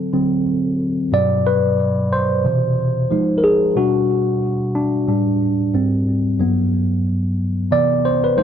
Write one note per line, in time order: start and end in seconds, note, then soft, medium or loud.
0.00 0.13 D3 medium
0.00 0.13 F#3 soft
0.00 0.14 C4 medium
0.00 0.41 A4 medium
0.13 0.43 D3 soft
0.13 0.43 F#3 soft
0.13 0.43 C4 medium
1.12 2.40 G2 soft
1.12 2.41 B2 medium
1.12 2.40 F#3 soft
1.12 1.47 D5 medium
1.47 2.14 B4 medium
2.13 3.34 C5 medium
2.44 3.07 B2 medium
2.44 3.07 C3 soft
2.44 3.07 E3 soft
3.11 3.73 F3 medium
3.11 3.74 G#3 soft
3.11 3.74 D#4 medium
3.38 3.43 A#4 medium
3.44 3.74 G#4 medium
3.76 4.71 B2 soft
3.76 4.71 G3 soft
3.76 4.72 D4 medium
3.76 4.78 F#4 medium
4.75 5.07 D4 medium
5.07 5.70 A2 soft
5.07 5.71 G3 soft
5.07 5.71 D4 medium
5.74 6.20 G#2 soft
5.74 6.20 G3 soft
5.74 6.20 C4 medium
6.39 7.35 G2 medium
6.39 7.35 F#3 soft
6.39 7.35 B3 medium
7.71 8.34 C3 soft
7.71 8.34 E3 soft
7.71 8.35 B3 medium
7.71 8.06 D5 loud
8.05 8.25 C5 medium
8.24 8.37 B4 medium
8.37 8.43 F3 medium
8.37 8.43 G#3 soft
8.37 8.43 D#4 medium
8.37 8.43 C5 medium